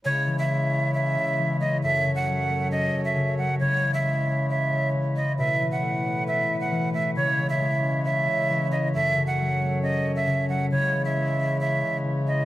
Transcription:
<<
  \new Staff \with { instrumentName = "Flute" } { \time 4/4 \key cis \minor \tempo 4 = 135 cis''8. e''4~ e''16 e''4. dis''8 | e''8. fis''4~ fis''16 dis''8. e''8. fis''8 | cis''8. e''4~ e''16 e''4. dis''8 | e''8. fis''4~ fis''16 e''8. fis''8. e''8 |
cis''8. e''4~ e''16 e''4. dis''8 | e''8. fis''4~ fis''16 dis''8. e''8. fis''8 | cis''8. e''4~ e''16 e''4. dis''8 | }
  \new Staff \with { instrumentName = "Harmonium" } { \time 4/4 \key cis \minor << { cis''1 | cis''1~ | cis''1 | b'1 |
cis''1~ | cis''1 | cis''1 | } \\ { e'1 | a'1 | e'1~ | e'1~ |
e'1 | a'1 | e'1 | } >> }
  \new Staff \with { instrumentName = "Harmonium" } { \clef bass \time 4/4 \key cis \minor <cis gis>1 | <fis, fis>1 | <cis gis>1 | <a, a>1 |
<cis gis>1 | <fis, fis>1 | <cis gis>1 | }
  \new Staff \with { instrumentName = "Harp" } { \clef bass \time 4/4 \key cis \minor cis8 e8 gis8 cis'8 cis''8 cis8 e8 gis8 | fis,8 cis8 fis8 a8 cis'8 fis,8 cis8 fis8 | cis8 e8 gis8 cis'8 cis''8 cis8 e8 gis8 | b,8 e8 a8 b8 b'8 b,8 e8 a8 |
cis8 e8 gis8 cis'8 cis''8 cis8 e8 gis8 | fis,8 cis8 fis8 a8 cis'8 fis,8 cis8 fis8 | cis8 e8 gis8 cis'8 cis''8 cis8 e8 gis8 | }
>>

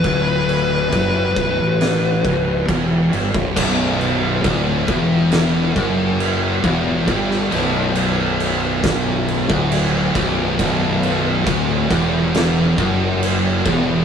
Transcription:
<<
  \new Staff \with { instrumentName = "Lead electric guitar" } { \time 4/4 \key b \minor \tempo 4 = 68 b'2. r4 | r1 | r1 | r1 | }
  \new Staff \with { instrumentName = "Distorted electric guitar" } { \clef bass \time 4/4 \key b \minor d,4 fis,8 b,,16 a,8. cis,8 e,8 g,16 b,,16 | r1 | r1 | b,,4 d,8 e,4 fis,4 e,8 | }
  \new Staff \with { instrumentName = "Distorted electric guitar" } { \clef bass \time 4/4 \key b \minor d,4 fis,8 b,,16 a,8. cis,8 e,8 g,16 b,,16 | b,,4 d,8 e,4 fis,4 e,8 | g,8 b,,2~ b,,16 d,8. b,,8 | b,,4 d,8 e,4 fis,4 e,8 | }
  \new Staff \with { instrumentName = "Distorted electric guitar" } { \clef bass \time 4/4 \key b \minor r1 | b,,4 d,8 e,4 fis,4 e,8 | g,8 b,,2~ b,,16 d,8. b,,8 | b,,4 d,8 e,4 fis,4 e,8 | }
  \new Staff \with { instrumentName = "Fingered electric bass" } { \clef bass \time 4/4 \key b \minor d,,4 fis,,8 b,,,16 a,,8. cis,,8 e,,8 g,,16 b,,,16 | b,,,4 d,,8 e,,4 fis,,4 e,,8 | g,,8 b,,,2~ b,,,16 d,,8. b,,,8 | b,,,4 d,,8 e,,4 fis,,4 e,,8 | }
  \new DrumStaff \with { instrumentName = "Drums" } \drummode { \time 4/4 <cymc bd>8 cymc8 <cymc bd>8 <cymc bd>8 <cymc sn>8 <cymc bd>8 <cymc bd>8 cymc16 bd16 | <cymc bd>8 cymc8 <cymc bd>8 <cymc bd>8 <cymc sn>8 <cymc bd>8 cymc8 <cymc bd>8 | <cymc bd>16 sn16 cymc8 cymc8 cymc8 <cymc bd sn>8 cymc16 bd16 cymc8 <cymc bd>8 | <cymc bd>8 cymc8 <cymc bd>8 <cymc bd>8 <cymc sn>8 <cymc bd>8 cymc8 <cymc bd>8 | }
>>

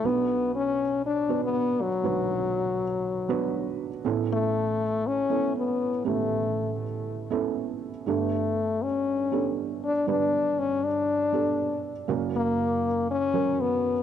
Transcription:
<<
  \new Staff \with { instrumentName = "Felt piano" } { \time 4/4 \key b \minor \tempo 4 = 120 <b d' fis' b'>4. r4 <b d' fis' b'>4 r8 | <b d' fis' b'>4. r4 <b d' fis' b'>4 r8 | <b cis' e' a'>4. r4 <b cis' e' a'>4 r8 | <b cis' e' g'>4. r4 <b cis' e' a'>4 r8 |
<b d' g' a'>4. r4 <b d' g' a'>4 r8 | <b d' g' b'>4. r4 <b d' g' a'>4 r8 | <ais cis' fis' ais'>4. r4 <fis cis' fis' ais'>4 r8 | }
  \new Staff \with { instrumentName = "Felt piano" } { \clef bass \time 4/4 \key b \minor <b,, b,>1 | <b,, b,>1 | <a,, a,>1 | <a,, a,>1 |
<g,, g,>1 | <g,, g,>1 | <fis,, fis,>1 | }
  \new Staff \with { instrumentName = "French horn" } { \time 4/4 \key b \minor b4 cis'4 d'8. b8. fis8~ | fis2.~ fis8 r8 | r8 a4. cis'4 b4 | a4. r2 r8 |
a4. cis'4. r8 d'8 | d'4 cis'8 d'2 r8 | r8 ais4. cis'4 b4 | }
>>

